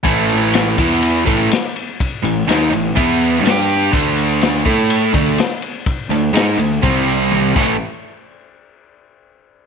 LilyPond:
<<
  \new Staff \with { instrumentName = "Overdriven electric guitar" } { \time 4/4 \key d \major \tempo 4 = 124 <a, e a>4. <e b e'>4 <a, e a>8 r4 | r8 <a, e>8 <dis bes dis'>8 <a, e>8 <e b e'>4 <g d' g'>4 | <d a d'>4. <a e' a'>4 <d a d'>8 r4 | r8 <d a>8 <gis dis' gis'>8 <d a>8 <c g c'>4. <a, e a>8 |
r1 | }
  \new Staff \with { instrumentName = "Picked electric bass" } { \clef bass \time 4/4 \key d \major a,,4. e,4 a,,8 r4 | r8 a,,8 dis,8 a,,8 e,4 g,4 | d,4. a,4 d,8 r4 | r8 d,8 gis,8 d,8 c,4. a,,8 |
r1 | }
  \new DrumStaff \with { instrumentName = "Drums" } \drummode { \time 4/4 <bd cymr>8 <cymr sn>8 <cymr sn>8 <bd cymr>8 cymr8 <bd cymr>8 <cymr sn>8 cymr8 | <bd cymr>8 cymr8 <cymr sn>8 cymr8 <bd cymr>8 cymr8 <cymr sn>8 cymr8 | <bd cymr>8 cymr8 <cymr sn>8 <bd cymr>8 cymr8 <bd cymr>8 <cymr sn>8 cymr8 | <bd cymr>8 <cymr sn>8 <cymr sn>8 cymr8 <bd cymr>8 cymr8 tommh8 <cymc bd>8 |
r4 r4 r4 r4 | }
>>